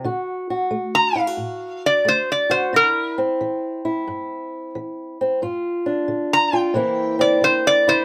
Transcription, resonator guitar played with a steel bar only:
0.95 1.18 A#5 medium
1.18 1.82 F5 medium
1.86 2.07 D5 medium
2.08 2.29 C5 medium
2.32 2.52 D5 medium
2.51 2.73 C5 medium
2.76 3.18 A#4 medium
6.33 6.55 A#5 loud
6.55 7.19 G5 medium
7.21 7.42 D5 medium
7.44 7.65 C5 medium
7.67 7.88 D5 medium
7.89 8.05 C5 medium

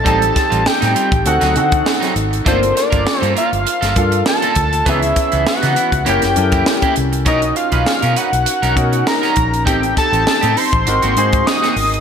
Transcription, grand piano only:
0.06 1.00 C4 medium
0.06 1.01 D#4 medium
0.06 1.01 G4 medium
0.06 1.01 A4 medium
1.25 1.50 C4 medium
1.25 1.50 D#4 medium
1.25 1.50 F#4 medium
1.25 1.51 A4 medium
1.56 2.28 C4 medium
1.56 2.28 D#4 medium
1.56 2.28 F#4 medium
1.56 2.28 A4 medium
2.46 2.53 A3 soft
2.46 3.41 D4 medium
2.46 3.41 F4 medium
2.46 3.41 A4 medium
2.52 3.44 A#3 medium
3.96 4.68 A#3 medium
3.96 4.68 D4 medium
3.96 4.68 F4 medium
3.96 4.69 A4 medium
4.86 5.81 B3 medium
4.86 5.81 C#4 medium
4.86 5.81 E4 medium
4.86 5.82 G#4 medium
6.06 6.31 C#4 medium
6.06 6.31 E4 medium
6.06 6.31 G4 medium
6.06 6.31 A#4 medium
6.36 7.08 C#4 medium
6.36 7.08 E4 medium
6.36 7.08 G4 medium
6.36 6.44 A4 medium
6.44 7.12 A#4 medium
7.26 8.21 C#4 medium
7.26 8.21 D#4 medium
7.26 8.21 F#4 medium
7.26 8.22 A#4 medium
8.76 9.48 C#4 medium
8.76 9.48 D#4 medium
8.76 9.48 F#4 medium
8.76 9.49 A#4 medium
9.66 10.61 C4 medium
9.66 10.62 D#4 medium
9.66 10.62 G4 medium
9.66 10.62 A4 medium
10.87 11.12 C4 medium
10.87 11.12 D#4 medium
10.87 11.12 F#4 medium
10.87 11.12 A#4 medium
11.17 11.89 C4 medium
11.17 11.89 D#4 medium
11.17 11.89 F#4 medium
11.17 11.89 G#4 medium

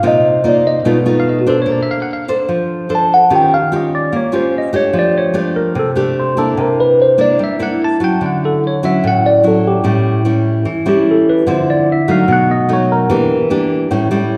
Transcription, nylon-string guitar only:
0.03 0.83 C3 medium
0.03 0.41 A#3 medium
0.03 0.41 D#4 medium
0.03 0.41 F4 medium
0.44 0.83 A#3 medium
0.44 0.84 D#4 medium
0.44 0.84 F4 medium
0.85 1.65 B2 medium
0.85 0.97 A3 medium
0.85 0.97 D#4 medium
0.85 0.98 F4 medium
1.06 1.43 A3 medium
1.06 1.43 D#4 medium
1.06 1.43 F4 medium
1.46 2.25 D4 medium
1.46 2.25 A4 medium
1.46 2.25 C5 medium
1.66 2.46 A#3 medium
2.28 2.86 D4 medium
2.28 2.86 A4 medium
2.28 2.87 C5 medium
2.49 3.28 F3 medium
2.89 3.16 D4 soft
2.89 3.16 A4 medium
2.89 3.16 C5 medium
3.30 4.10 D#3 medium
3.30 3.57 C#4 medium
3.30 3.57 F4 medium
3.30 3.57 G4 medium
3.72 4.12 C#4 medium
3.72 4.12 F4 medium
3.72 4.13 G4 medium
4.13 4.92 A#3 medium
4.32 4.70 C#4 medium
4.32 4.70 F4 medium
4.32 4.70 G4 medium
4.73 5.33 A3 medium
4.73 5.33 D4 medium
4.73 5.34 G4 medium
4.93 5.73 F3 medium
5.34 5.75 A3 soft
5.34 5.75 D4 medium
5.34 5.75 G4 medium
5.75 6.55 C3 medium
5.96 6.33 A3 medium
5.96 6.33 D4 medium
5.96 6.34 G4 medium
6.37 7.15 A#3 medium
6.37 7.15 D4 medium
6.37 7.16 E4 medium
6.57 7.37 C3 medium
7.18 7.56 A#3 medium
7.18 7.56 D4 medium
7.18 7.56 E4 medium
7.39 8.19 G3 medium
7.59 7.97 A#3 medium
7.59 7.97 D4 medium
7.59 7.97 E4 medium
8.00 8.58 F#3 medium
8.00 8.58 C#4 medium
8.00 8.58 E4 medium
8.21 9.00 D3 medium
8.83 9.40 F#3 medium
8.83 9.41 C#4 medium
8.83 9.41 E4 medium
9.04 9.82 A2 medium
9.44 9.81 F#3 medium
9.44 9.81 C#4 medium
9.44 9.81 E4 medium
9.84 10.63 A2 medium
9.84 10.21 G3 medium
9.84 10.22 C#4 medium
9.84 10.22 E4 medium
10.25 10.65 G3 medium
10.25 10.66 C#4 medium
10.25 10.66 E4 medium
10.65 11.45 E3 medium
10.86 11.44 G3 medium
10.86 11.44 C#4 medium
10.86 11.44 E4 medium
11.47 12.26 D3 medium
11.47 11.87 F3 medium
11.47 11.88 C4 medium
11.47 11.88 E4 medium
12.08 12.66 F#3 medium
12.08 12.66 A3 medium
12.08 12.66 D#4 medium
12.28 13.08 B2 medium
12.69 13.07 F#3 medium
12.69 13.07 A3 medium
12.69 13.07 D#4 medium
13.10 13.89 E3 medium
13.10 13.36 A#3 medium
13.10 13.37 D4 medium
13.10 13.37 G4 medium
13.50 13.90 A#3 medium
13.50 13.90 D4 medium
13.50 13.90 G4 medium
13.91 14.37 A2 medium
13.91 14.08 G3 medium
13.91 14.09 C#4 medium
13.91 14.09 E4 medium
14.11 14.37 G3 medium
14.11 14.37 C#4 medium
14.11 14.37 E4 medium

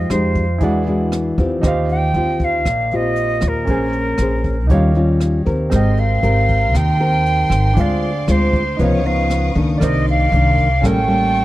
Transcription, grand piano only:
0.00 0.58 F4 soft
0.00 0.60 D#5 soft
0.00 0.61 G5 medium
0.58 1.60 E4 soft
0.58 1.61 G#4 soft
0.63 1.62 D5 soft
0.63 1.63 F#5 soft
1.62 3.63 D#4 medium
1.62 3.64 G4 soft
1.62 3.65 C5 soft
1.68 3.66 F5 medium
3.65 4.67 C#4 soft
3.65 4.68 A#4 soft
3.69 4.69 C5 soft
3.69 4.70 G#5 medium
4.67 5.69 D#4 soft
4.67 5.70 G4 soft
4.67 5.71 C#5 soft
4.74 5.72 F5 medium
5.70 7.72 C4 soft
5.74 7.74 A#4 soft
5.74 7.75 G5 soft
7.74 8.75 D4 soft
7.74 8.76 G#4 soft
7.74 8.77 C5 soft
7.80 8.79 F5 medium
8.77 9.78 D#4 soft
8.77 9.79 B4 soft
8.81 9.80 C#5 soft
8.81 9.81 F5 soft
9.78 10.81 A#4 soft
9.78 10.80 D5 soft
9.82 10.83 D#4 medium
9.82 10.82 C5 soft
10.81 11.45 C#4 soft
10.81 11.45 A4 soft
10.85 11.45 A#4 soft
10.85 11.45 G5 soft

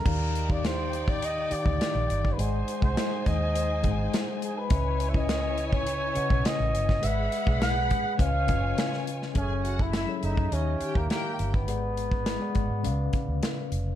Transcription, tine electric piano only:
0.05 0.41 D#3 medium
0.05 0.41 D#4 medium
0.05 0.41 G4 medium
0.05 0.42 D5 medium
0.05 0.42 F5 medium
0.48 1.32 D#3 medium
0.48 1.32 D#4 medium
0.48 1.33 G4 medium
0.48 1.33 D5 medium
0.48 1.33 F5 medium
1.50 2.22 D#3 medium
1.50 2.22 D#4 medium
1.50 2.22 G4 medium
1.50 2.23 D5 medium
1.50 2.23 F5 medium
2.37 2.73 G#3 medium
2.37 2.74 G#4 medium
2.37 2.74 C5 medium
2.37 2.74 D#5 medium
2.37 2.75 F#5 medium
2.81 3.64 G#3 medium
2.81 3.65 G#4 medium
2.81 3.65 C5 medium
2.81 3.65 D#5 medium
2.81 3.66 F#5 medium
3.83 4.54 G#3 medium
3.83 4.54 G#4 medium
3.83 4.55 C5 medium
3.83 4.55 D#5 medium
3.83 3.91 F#5 medium
3.91 4.59 G#5 medium
4.69 5.06 C#3 medium
4.69 5.06 C#4 medium
4.69 5.06 B4 medium
4.69 5.06 D#5 medium
4.69 5.07 E5 medium
5.13 5.96 C#3 medium
5.13 5.97 C#4 medium
5.13 5.98 E4 medium
5.13 5.97 B4 medium
5.13 5.97 D#5 medium
6.14 6.86 C#3 medium
6.14 6.87 C#4 medium
6.14 6.87 B4 medium
6.14 6.87 D#5 medium
6.14 6.88 F#5 medium
7.01 7.38 G#3 medium
7.01 7.38 G#4 medium
7.01 7.38 B4 medium
7.01 7.39 D5 medium
7.01 7.39 F#5 medium
7.45 8.19 G#3 medium
7.45 8.19 G#4 medium
7.45 8.18 B4 medium
7.45 8.20 D5 medium
7.45 8.20 F#5 medium
8.18 8.42 C#3 medium
8.18 8.43 C#4 medium
8.18 8.43 B4 medium
8.18 8.43 D#5 medium
8.18 8.44 F5 medium
8.47 9.19 C#3 medium
8.47 9.19 C#4 medium
8.47 9.19 B4 medium
8.47 9.20 D#5 medium
8.47 9.20 F5 medium
9.34 9.94 F#3 medium
9.34 9.94 C#4 medium
9.34 9.95 G#4 medium
9.34 9.95 A4 medium
9.34 9.95 E5 medium
10.07 10.19 F#3 medium
10.07 10.20 C#4 medium
10.07 10.20 G#4 medium
10.07 10.20 A4 medium
10.07 10.21 C#5 medium
10.21 10.51 F#3 medium
10.21 10.51 C#4 medium
10.21 10.51 G#4 medium
10.21 10.52 A4 medium
10.21 10.52 E5 medium
10.51 11.46 D#3 medium
10.51 11.47 D#4 medium
10.51 11.47 G4 medium
10.51 11.47 C#5 medium
10.51 11.47 E5 medium
11.67 12.27 G#3 medium
11.67 12.27 G#4 medium
11.67 12.27 B4 medium
11.67 12.28 D5 medium
11.67 12.28 F#5 medium
12.40 12.52 G#3 medium
12.40 12.52 G#4 medium
12.40 12.52 B4 medium
12.40 12.53 D5 medium
12.40 12.53 F#5 medium
12.54 12.84 G#3 medium
12.54 12.84 G#4 medium
12.54 12.83 B4 medium
12.54 12.83 D5 medium
12.54 12.85 F#5 medium
12.83 13.78 C#3 medium
12.83 13.79 C#4 medium
12.83 13.79 B4 medium
12.83 13.79 D5 medium
12.83 13.79 F5 loud

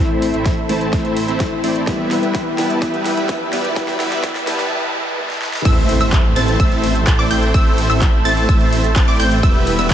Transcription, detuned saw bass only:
0.00 0.31 A1 medium
0.34 0.67 A1 medium
0.69 0.91 A1 loud
0.93 1.26 A1 medium
1.28 1.61 A1 medium
1.64 1.85 A1 loud
1.87 2.20 E1 loud
2.23 2.56 E1 loud
2.58 2.80 E1 medium
2.82 3.15 E1 medium
3.17 3.50 E1 medium
3.53 3.74 E1 medium
3.76 4.09 E1 loud
4.12 4.45 E1 loud
4.47 4.69 E1 medium
5.65 5.98 A1 medium
6.01 6.34 A1 loud
6.36 6.57 A1 medium
6.60 7.05 A1 loud
7.07 7.16 A1 medium
7.19 7.28 A1 medium
7.31 7.52 A1 loud
7.54 7.87 A1 loud
7.90 8.23 A1 loud
8.25 8.46 A1 medium
8.49 8.94 A1 medium
8.96 9.05 A1 medium
9.08 9.17 A1 medium
9.20 9.41 A1 loud
9.43 9.76 E1 loud
9.79 9.94 E1 loud

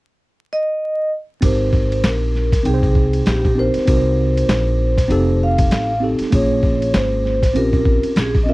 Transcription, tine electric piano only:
1.41 2.50 C4 medium
1.41 2.51 D#4 medium
1.41 2.52 G4 medium
1.45 2.52 A#4 medium
2.63 3.46 C4 medium
2.63 3.47 D#4 medium
2.63 2.74 A#4 medium
2.63 3.47 G5 medium
2.74 3.51 C5 medium
3.55 3.83 C4 medium
3.55 3.84 D#4 medium
3.55 3.85 G4 medium
3.55 3.85 A#4 medium
3.85 4.95 C4 medium
3.85 4.96 D#4 medium
3.85 4.96 F#4 medium
3.90 4.97 A#4 medium
5.08 5.91 C4 medium
5.08 5.91 D#4 medium
5.08 5.92 G4 medium
5.08 5.93 A4 medium
6.00 6.28 C4 medium
6.00 6.29 D#4 medium
6.00 6.29 G4 medium
6.00 6.30 A4 medium
6.30 7.40 A#3 medium
6.30 7.41 C#4 medium
6.30 7.41 F4 medium
6.35 7.42 G#4 medium
7.54 8.36 C4 medium
7.54 8.37 C#4 medium
7.54 8.37 F4 medium
7.58 8.38 G4 medium
8.46 8.54 C4 medium
8.46 8.54 C#4 medium
8.46 8.54 F4 medium
8.50 8.54 A#4 medium

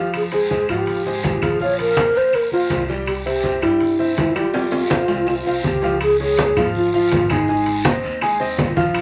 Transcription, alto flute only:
0.00 0.11 G4 medium
0.16 0.22 G#4 medium
0.34 0.67 G#4 medium
0.71 1.21 G4 medium
1.25 1.45 G4 medium
1.43 1.61 G#4 medium
1.62 1.79 C#5 loud
1.80 2.19 A#4 loud
2.17 2.37 C5 loud
2.35 2.52 A#4 loud
2.53 2.87 F4 medium
3.08 3.14 G4 medium
3.26 3.60 G4 medium
3.63 4.14 E4 medium
4.19 4.35 E4 medium
4.37 5.62 F4 medium
5.65 5.99 G4 medium
6.02 6.19 G#4 loud
6.21 6.72 G#4 loud
6.76 7.33 F4 medium
7.32 7.86 D#4 medium

